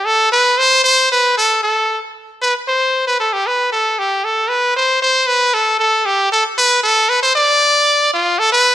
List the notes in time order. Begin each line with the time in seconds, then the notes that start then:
0.05 A4
0.32 B4
0.58 C5
0.84 C5
1.12 B4
1.37 A4
1.63 A4
2.42 B4
2.68 C5
3.07 B4
3.20 A4
3.33 G4
3.46 B4
3.72 A4
3.98 G4
4.24 A4
4.49 B4
4.76 C5
5.02 C5
5.27 B4
5.54 A4
5.79 A4
6.06 G4
6.32 A4
6.58 B4
6.83 A4
7.09 B4
7.23 C5
7.35 D5
8.13 F4
8.39 A4
8.52 B4